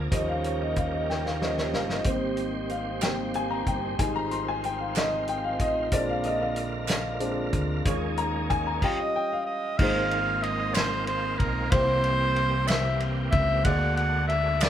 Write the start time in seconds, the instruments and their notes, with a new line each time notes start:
Already playing: grand piano D3 G#3 C4, tonewheel organ A#3 A#4, french horn section D4
0.11 fingered electric bass D#2, tonewheel organ D#3 C#4 G4, grand piano F3 G3 C#4 D#5, french horn section A#3 C#4 D#4 G4, kick, closed hi-hat
0.29 grand piano F5
0.44 grand piano C#5, closed hi-hat
0.62 grand piano D#5
0.76 grand piano F5, kick, closed hi-hat
0.94 grand piano D#5
1.10 grand piano G5, snare
1.25 grand piano F5, snare
1.41 grand piano F3 G3 C#4 D#5, snare
1.57 grand piano C#5, snare
1.74 fingered electric bass G1, grand piano F5, snare
1.89 grand piano D#5, snare
2.04 fingered electric bass G#1, tonewheel organ D#3 C4 G4 C5, french horn section G3 C4 D#4, grand piano G3 A#3 C4, kick, closed hi-hat
2.37 closed hi-hat
2.69 grand piano F5, closed hi-hat
3.01 grand piano G3 A#3 C4 G5, snare, clap, closed hi-hat
3.34 grand piano G#5, closed hi-hat
3.51 grand piano A#5
3.67 fingered electric bass G1, grand piano G5, kick, closed hi-hat
3.98 fingered electric bass G#1, french horn section F3 D#4 F4, grand piano G3 G#3 D#4 G#5, tonewheel organ F4, kick, closed hi-hat
4.16 grand piano A#5
4.31 grand piano C6, closed hi-hat
4.48 grand piano G#5
4.64 grand piano G5, closed hi-hat
4.80 grand piano F5
4.95 grand piano D#5, snare, clap, closed hi-hat
5.28 grand piano G5, closed hi-hat
5.44 grand piano F5
5.59 fingered electric bass A1, grand piano D#5, kick, closed hi-hat
5.91 fingered electric bass A#1, tonewheel organ D3 A#3 F4 A#4, grand piano G#3 C4 D4 D5, french horn section A#3 D4, kick, closed hi-hat
6.09 grand piano F5
6.24 grand piano D#5, closed hi-hat
6.42 grand piano F5
6.56 closed hi-hat
6.88 snare, clap, closed hi-hat
7.20 grand piano G#3 C4 D4, closed hi-hat
7.53 fingered electric bass D2, kick, closed hi-hat
7.85 fingered electric bass D#2, tonewheel organ D#3 G#3 A#3 C#4 G#4, grand piano G#3 C#4 F4 C#5, french horn section C#4 D#4, kick, closed hi-hat
8.17 grand piano A#5, closed hi-hat
8.50 grand piano G#5, kick, closed hi-hat
8.67 grand piano A#5
8.82 grand piano G3 C#4 F4 G5, oboe D#5, kick, crash
9.00 grand piano D#5
9.16 grand piano G5
9.33 grand piano F5
9.46 oboe D#5
9.78 fingered electric bass G#1, grand piano G#2 A#3 D#4 F4 G#4, tonewheel organ D#3 G#3 A#3 C4 F4, oboe F5, kick, crash
9.82 grand piano C5
10.11 ride bell
10.43 oboe D#5, ride bell
10.75 oboe C5, snare, clap, ride bell
11.07 oboe C5, ride bell
11.38 fingered electric bass B1, oboe A#4, kick, ride bell
11.70 fingered electric bass C2, grand piano C3 A#3 C4 E4 G4 C5, tonewheel organ E3 G3 C4 G4, oboe C5, kick, ride bell
12.04 ride bell
12.36 ride bell
12.67 oboe E5, snare, clap, ride bell
13.00 ride bell
13.31 fingered electric bass C#2, oboe E5, kick, ride bell
13.63 fingered electric bass D2, grand piano D3 A#3 D4 F#4 G#4 D5, tonewheel organ D3 G#3 D4 F#4, oboe F#5, kick, ride bell
13.97 oboe F#5, ride bell
14.28 oboe E5, ride bell
14.61 oboe D5, snare, clap, ride bell